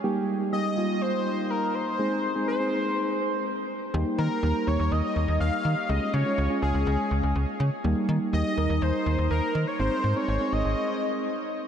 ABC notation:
X:1
M:4/4
L:1/16
Q:1/4=123
K:Ebmix
V:1 name="Analog synth lead"
z4 e4 c4 B2 c2- | c4 c8- c2 z2 | z2 B4 d2 e4 f4 | e2 d4 A8 z2 |
z4 e4 c4 B3 d | c3 d3 e8 z2 |]
V:2 name="Synth keys"
[G,B,EG]4 [G,B,EG]2 [G,B,EF]6- [G,B,EF] z3 | [A,CEA]3 [A,CEA]2 [A,CEA]6- [A,CEA] z4 | [G,B,EG]4 [G,B,EG]2 [G,B,EG]6- [G,B,EG] z3 | [A,DFA]3 [A,DFA]2 [A,DFA]6- [A,DFA] z4 |
[G,B,EG]4 [G,B,EG]2 [G,B,EB]6- [G,B,EB] z3 | [A,CEA]3 [A,CEA]2 [A,CEA]6- [A,CEA] z4 |]
V:3 name="FM bass" clef=bass
z16 | z16 | E,, z E, z E,, z E,, E,, E,, z E,, E,, E,, z E, z | D,, z D, z D,, z D,, D,, D,, z D,, D,, D,, z D, z |
E,, z E, z E,, z E,, E,, E,, z E,, E,, E,, z E, z | A,,, z A,, z A,,, z A,,, A,,, z8 |]